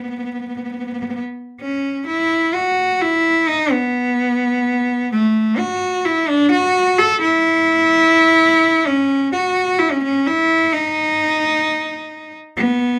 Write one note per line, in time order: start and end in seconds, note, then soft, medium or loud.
0.03 0.08 B3 medium
0.09 0.16 B3 medium
0.18 0.23 B3 medium
0.24 0.31 B3 soft
0.33 0.39 B3 medium
0.40 0.47 B3 soft
0.48 0.54 B3 medium
0.56 0.62 B3 soft
0.63 0.69 B3 medium
0.71 0.77 B3 soft
0.78 0.85 B3 medium
0.86 0.92 B3 soft
0.93 0.99 B3 medium
1.00 1.07 B3 medium
1.08 1.14 B3 medium
1.15 1.22 B3 medium
1.60 2.03 C#4 medium
2.06 2.55 E4 medium
2.54 3.03 F#4 medium
3.01 3.49 E4 medium
3.48 3.72 D#4 medium
3.71 5.11 B3 medium
5.12 5.59 A3 medium
5.58 6.06 F#4 loud
6.05 6.30 E4 medium
6.28 6.50 D4 loud
6.51 6.99 F#4 loud
6.98 7.20 A4 loud
7.21 8.88 E4 loud
8.86 9.31 C#4 loud
9.32 9.80 F#4 medium
9.79 9.92 E4 medium
9.91 10.02 C#4 medium
10.03 10.28 C#4 medium
10.26 10.74 E4 loud
10.73 12.34 D#4 loud
12.56 12.99 B3 medium